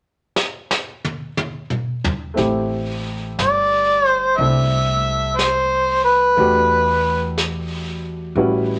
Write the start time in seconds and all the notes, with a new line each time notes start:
0.36 snare
0.71 snare
1.05 high tom
1.37 high tom
1.70 mid tom
2.04 floor tom
2.34 A1 A3 C4 E4 G4, brush sweep, snare
3.39 G1 D5, brush sweep, snare, hi-hat pedal
4.08 C5
4.37 C2 C4 D4 E4 A4 E5, brush sweep
5.37 C5, brush sweep, snare, hi-hat pedal
6.04 B4
6.36 E2 A3 D4 F#4 G4, brush sweep
6.41 B4
7.38 brush sweep, snare, hi-hat pedal
8.35 A1 G3 C#4 E4 F#4 B4, brush sweep